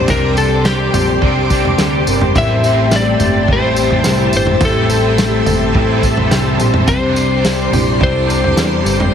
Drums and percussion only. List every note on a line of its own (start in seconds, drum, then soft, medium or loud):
0.08 kick loud
0.08 floor tom loud
0.08 tambourine medium
0.37 tambourine medium
0.65 snare loud
0.65 tambourine medium
0.94 floor tom medium
0.94 tambourine medium
1.22 kick medium
1.22 floor tom medium
1.50 kick medium
1.50 tambourine medium
1.65 floor tom medium
1.78 snare loud
1.78 tambourine medium
2.07 tambourine medium
2.21 floor tom medium
2.35 kick loud
2.35 floor tom loud
2.35 tambourine medium
2.64 tambourine medium
2.91 snare loud
2.91 tambourine medium
3.20 floor tom medium
3.20 tambourine medium
3.48 kick loud
3.48 floor tom medium
3.76 tambourine medium
3.90 floor tom medium
4.04 snare medium
4.04 tambourine loud
4.33 tambourine medium
4.47 floor tom medium
4.61 kick medium
4.61 floor tom loud
4.61 tambourine medium
4.90 tambourine medium
5.18 snare loud
5.18 tambourine medium
5.46 floor tom medium
5.46 tambourine medium
5.75 kick medium
5.75 floor tom medium
6.03 kick medium
6.03 tambourine medium
6.17 floor tom medium
6.31 snare loud
6.31 tambourine medium
6.60 tambourine medium
6.74 floor tom medium
6.88 kick loud
6.88 floor tom loud
6.88 tambourine medium
7.16 tambourine medium
7.45 snare loud
7.45 tambourine medium
7.73 floor tom medium
7.73 tambourine medium
8.01 kick loud
8.01 floor tom medium
8.30 tambourine medium
8.44 floor tom medium
8.57 snare loud
8.57 tambourine medium
8.86 tambourine medium
9.00 floor tom medium